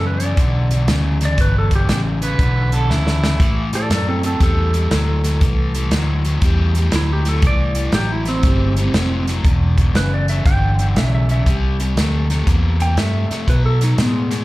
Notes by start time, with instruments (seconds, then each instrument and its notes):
Already playing: overdriven electric guitar E2 C#3, fingered electric bass F#2
0.07 electric slide guitar B4
0.20 overdriven electric guitar E2 C#3, electric slide guitar D5, closed hi-hat
0.37 fingered electric bass B1, overdriven electric guitar E2 D3, kick, snare, closed hi-hat
0.71 overdriven electric guitar E2 D3, closed hi-hat
0.87 fingered electric bass D2, overdriven electric guitar E2 C#3, snare, closed hi-hat
1.21 overdriven electric guitar E2 C#3, snare, closed hi-hat
1.25 electric slide guitar D5
1.38 fingered electric bass G1, overdriven electric guitar E2 B2, electric slide guitar B4, kick, closed hi-hat
1.58 electric slide guitar A4
1.71 overdriven electric guitar E2 B2, kick, closed hi-hat
1.75 electric slide guitar G4
1.89 fingered electric bass A1, overdriven electric guitar E2 C#3, snare, closed hi-hat
2.22 overdriven electric guitar E2 C#3, harmonica B4, closed hi-hat
2.38 fingered electric bass B1, overdriven electric guitar E2 D3, kick, closed hi-hat
2.72 overdriven electric guitar E2 D3, harmonica A4, closed hi-hat
2.89 fingered electric bass D2, overdriven electric guitar E2 C#3, harmonica E4, snare
3.07 snare
3.23 overdriven electric guitar E2 C#3, snare
3.39 fingered electric bass A2, overdriven electric guitar A2 E3, kick, closed hi-hat
3.73 overdriven electric guitar A2 E3, electric slide guitar A4 D5, snare, closed hi-hat
3.90 fingered electric bass F#2, overdriven electric guitar A2 F#3, electric slide guitar A4 D5, snare, closed hi-hat
4.08 electric slide guitar C4 A4
4.23 overdriven electric guitar A2 F#3, electric slide guitar C4 A4, closed hi-hat
4.40 fingered electric bass E2, overdriven electric guitar A2 G3, electric slide guitar A4, kick, snare, closed hi-hat
4.73 overdriven electric guitar A2 G3, closed hi-hat
4.91 fingered electric bass D2, overdriven electric guitar A2 F#3, snare, closed hi-hat
5.24 overdriven electric guitar A2 F#3, snare, closed hi-hat
5.41 fingered electric bass C2, overdriven electric guitar A2 E3, kick, closed hi-hat
5.74 overdriven electric guitar A2 E3, closed hi-hat
5.91 fingered electric bass D2, overdriven electric guitar A2 F#3, snare, closed hi-hat
6.25 overdriven electric guitar A2 F#3, closed hi-hat
6.42 fingered electric bass E2, overdriven electric guitar A2 G3, kick, closed hi-hat
6.75 overdriven electric guitar A2 G3, closed hi-hat
6.92 fingered electric bass D2, overdriven electric guitar A2 F#3, electric slide guitar E4, snare, closed hi-hat
7.13 electric slide guitar G4
7.25 overdriven electric guitar A2 F#3, electric slide guitar A4, snare, closed hi-hat
7.42 fingered electric bass C2, overdriven electric guitar A2 E3, kick, closed hi-hat
7.47 electric slide guitar D5
7.75 overdriven electric guitar A2 E3, closed hi-hat
7.92 fingered electric bass A1, overdriven electric guitar A2 F#3, electric slide guitar G4, snare, closed hi-hat
8.12 electric slide guitar E4
8.25 overdriven electric guitar A2 F#3, electric slide guitar C4, snare, closed hi-hat
8.43 fingered electric bass G1, overdriven electric guitar A2 G3, kick, snare, closed hi-hat
8.77 overdriven electric guitar A2 G3, closed hi-hat
8.93 fingered electric bass F1, overdriven electric guitar A2 F#3, snare, closed hi-hat
9.27 overdriven electric guitar A2 F#3, snare, closed hi-hat
9.44 fingered electric bass E1, overdriven electric guitar E2 B2, kick, closed hi-hat
9.78 overdriven electric guitar E2 B2, kick, closed hi-hat
9.94 fingered electric bass F#1, overdriven electric guitar E2 C#3, electric slide guitar B4, snare, closed hi-hat
10.14 electric slide guitar D5
10.28 overdriven electric guitar E2 C#3, electric slide guitar E5, closed hi-hat
10.45 fingered electric bass G1, overdriven electric guitar E2 D3, electric slide guitar G5, kick, snare, closed hi-hat
10.79 overdriven electric guitar E2 D3, closed hi-hat
10.95 fingered electric bass B1, overdriven electric guitar E2 C#3, electric slide guitar E5, snare, closed hi-hat
11.15 electric slide guitar E5
11.29 overdriven electric guitar E2 C#3, electric slide guitar E5, closed hi-hat
11.46 fingered electric bass C2, overdriven electric guitar C3 G3, kick, closed hi-hat
11.80 overdriven electric guitar C3 G3, closed hi-hat
11.96 fingered electric bass D2, overdriven electric guitar C3 A3, snare, closed hi-hat
12.30 overdriven electric guitar C3 A3, snare, closed hi-hat
12.46 fingered electric bass E2, overdriven electric guitar C3 A#3, kick, closed hi-hat
12.80 overdriven electric guitar C3 A#3, electric slide guitar G5, closed hi-hat
12.96 fingered electric bass G2, overdriven electric guitar C3 A3, electric slide guitar E5, snare, closed hi-hat
13.30 overdriven electric guitar C3 A3, muted fingered electric bass stroke, snare, closed hi-hat
13.48 fingered electric bass B2, overdriven electric guitar B2 F#3, electric slide guitar B4, kick, closed hi-hat
13.66 electric slide guitar A4
13.81 overdriven electric guitar B2 F#3, electric slide guitar D#4, snare, closed hi-hat
13.98 fingered electric bass A2, overdriven electric guitar B2 G#3, electric slide guitar B3, snare, closed hi-hat
14.31 overdriven electric guitar B2 G#3, snare, closed hi-hat